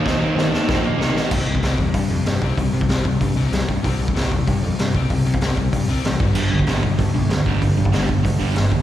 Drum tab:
CC |----------------|x---------------|----------------|----------------|
HH |----------------|----o---o---o---|o---o---o---o---|o---o---o---o---|
SD |o---o-o-o---o-o-|----o-------o---|----o-------o---|----o-------o---|
BD |o-------o-------|o--o--o-o-----o-|o--o--o-o-----o-|o--o--o-o-----o-|

CC |----------------|x---------------|----------------|
HH |o---o---o---o---|----o---o---o---|o---o---o---o---|
SD |----o-------o---|----o-------o---|----o-------o---|
BD |o--o--o-o-----o-|---o--o-o-----o-|o--o--o-o-----o-|